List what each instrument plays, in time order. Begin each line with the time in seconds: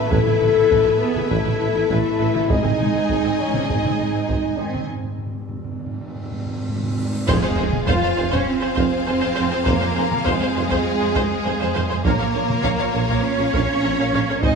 Already playing: cello section C#3, string section E3 A3 B3 B4, french horn section A3, violin section B4 E5
0.11 tuba A1, double bass section A1, cello section E4, french horn section A4, viola section B4, taiko
0.26 double bass section A1, viola section E4, taiko mid
0.41 double bass section A1, tuba A1, viola section A4, taiko mid
0.55 double bass section A1, viola section E4
0.70 tuba A1, double bass section A1, viola section B4, taiko
0.85 double bass section A1, viola section E4
1.00 cello section B3, french horn section G#4
1.15 double bass section A1, viola section E4, taiko mid
1.30 double bass section A1, tuba A1, cello section E4, french horn section A4, viola section B4, taiko
1.45 double bass section A1, viola section E4, taiko mid
1.60 tuba A1, double bass section A1, viola section A4
1.75 double bass section A1, viola section E4
1.90 tuba A1, double bass section A1, cello section A3, french horn section E4, viola section B4, taiko
2.19 double bass section A1, tuba A1, viola section A4
2.34 double bass section A1, viola section E4, taiko mid
2.48 tuba G#1, double bass section G#1, string section G#3 D#4 G#4 G#5, cello section G#3, french horn section D#4, viola section G#4, violin section D#5 G#5, taiko
2.59 timpani G#2
2.63 double bass section G#1, viola section C4, taiko mid
2.73 timpani G#2
2.80 tuba G#1, double bass section G#1, timpani G#2, viola section D#4, taiko mid
2.87 timpani G#2
2.95 double bass section G#1, viola section C4
3.02 timpani G#2
3.09 tuba G#1, double bass section G#1, timpani G#2, viola section G#4, taiko
3.17 timpani G#2
3.24 double bass section G#1, timpani G#2, viola section C4
3.32 timpani G#2
3.39 timpani G#2, cello section E3, french horn section C#4
3.47 timpani G#2
3.54 double bass section G#1, timpani G#2, viola section C4, taiko mid
3.61 timpani G#2
3.68 double bass section G#1, tuba G#1, timpani G#2, cello section G#3, french horn section D#4, viola section G#4, taiko
3.77 timpani G#2
3.84 double bass section G#1, timpani G#2, viola section C4, taiko mid
3.92 timpani G#2
3.98 double bass section G#1, tuba G#1, timpani G#2, viola section D#4
4.07 timpani G#2
4.13 double bass section G#1, timpani G#2, viola section C4
4.21 timpani G#2
4.28 tuba G#1, double bass section G#1, viola section G#4, taiko
4.36 timpani G#2
4.43 timpani G#2
4.50 timpani G#2
4.57 tuba G#1, double bass section G#1, timpani G#2, cello section D#3, french horn section C4, viola section D#4
4.66 timpani G#2
4.73 double bass section G#1, timpani G#2, viola section C4, taiko mid
4.81 timpani G#2
4.88 timpani G#2, cymbal swell
4.96 timpani G#2
5.04 timpani G#2
5.12 timpani G#2
5.18 timpani G#2
5.26 timpani G#2
5.33 timpani G#2
5.41 timpani G#2
5.48 timpani G#2
5.56 timpani G#2
5.64 timpani G#2
5.71 timpani G#2
5.79 timpani G#2
5.86 timpani G#2
5.94 timpani G#2
6.01 timpani G#2
6.07 timpani G#2
6.15 timpani G#2
6.23 timpani G#2
6.31 timpani G#2
6.39 timpani G#2
6.46 timpani G#2
6.53 timpani G#2
6.61 timpani G#2
6.69 timpani G#2
6.76 timpani G#2
6.83 timpani G#2
6.90 timpani G#2
6.98 timpani G#2
7.05 timpani G#2
7.13 timpani G#2
7.20 timpani G#2
7.27 tuba F1, timpani F2, double bass section F2, french horn section G#3, cello section G#3, string section C4 F4 G#4 F5, violin section G#4 C5 F5, viola section C5, concert bass drum, taiko, crash, sub drop
7.42 double bass section F2, viola section C5, violin section C5 F5
7.56 tuba F1, double bass section F2, violin section G#4 C5, viola section C5
7.72 taiko mid
7.87 tuba F1, double bass section F2, cello section F4, french horn section F4, viola section C5, violin section C5 F5, taiko
8.03 double bass section F2, viola section C5, violin section C5 F5, taiko rim
8.16 tuba F1, double bass section F2, violin section G#4 C5, viola section C5
8.31 double bass section F2, french horn section C#4, cello section C#4, viola section C5, violin section C5 C#5 F5, taiko
8.46 cello section C4, french horn section C4, violin section C5
8.61 double bass section F2, violin section G#4 C5, viola section C5, taiko rim
8.76 tuba F1, double bass section F2, viola section C5, violin section C5 F5, taiko
9.06 tuba F1, double bass section F2, french horn section C4, cello section C4, violin section G#4 C5, viola section C5
9.21 double bass section F2, viola section C5, violin section C5 F5
9.36 tuba F1, double bass section F2, violin section C5 F5, viola section C5
9.50 double bass section F2, violin section G#4 C5, viola section C5
9.65 tuba F1, double bass section F2, french horn section A#3, cello section A#3, violin section A#4 C5 F5, viola section C5, taiko
9.80 double bass section F2, violin section C5 F5, viola section C5
9.95 tuba F1, double bass section F2, violin section G#4 C5, viola section C5
10.11 taiko mid
10.24 tuba F1, double bass section F2, french horn section G#3, cello section G#3, violin section G#4 C5 F5, viola section C5, taiko
10.40 double bass section F2, violin section C5 F5, viola section C5
10.53 tuba F1, double bass section F2, violin section G#4 C5, viola section C5
10.69 double bass section F2, violin section C5 F5, viola section C5, taiko
11.00 double bass section F2, violin section G#4 C5, viola section C5
11.15 tuba F1, double bass section F2, violin section C5 F5, viola section C5, taiko
11.44 tuba F1, double bass section F2, violin section G#4 C5, viola section C5
11.60 double bass section F2, violin section C5 F5, viola section C5
11.74 tuba F1, double bass section F2, violin section C5 F5, viola section C5
11.88 double bass section F2, violin section G#4 C5, viola section C5
12.03 tuba A#1, double bass section A#1, cello section A#3, string section A#3 F4 C#5 F5, french horn section A#3, viola section A#4 C#5, violin section A#4 C#5 F5, taiko
12.19 double bass section A#1, viola section A#4 C#5, violin section C#5 F5
12.34 tuba A#1, double bass section A#1, violin section A#4 C#5, viola section A#4 C#5
12.50 taiko mid
12.63 tuba A#1, double bass section A#1, viola section A#4 C#5, violin section C#5 F5, taiko
12.79 double bass section A#1, viola section A#4 C#5, violin section C#5 F5
12.94 tuba A#1, double bass section A#1, violin section A#4 C#5, viola section A#4 C#5
13.08 double bass section A#1, viola section A#4 C#5, violin section C#5 F5, taiko
13.23 french horn section C#4, cello section C#4, violin section C#5
13.38 double bass section A#1, viola section A#4 C#5, violin section A#4 C#5
13.53 double bass section A#1, tuba A#1, viola section A#4 C#5, violin section C#5 F5, taiko
13.83 tuba A#1, double bass section A#1, viola section A#4 C#5, violin section A#4 C#5
13.98 double bass section A#1, viola section A#4 C#5, violin section C#5 F5
14.13 tuba A#1, double bass section A#1, viola section A#4 C#5, violin section C#5 F5
14.27 double bass section A#1, viola section A#4 C#5, violin section A#4 C#5
14.42 double bass section G#1, tuba G#1, string section C4 G#4 C5 D#5, french horn section D#4, cello section D#4, viola section C5, violin section D#5 G#5, taiko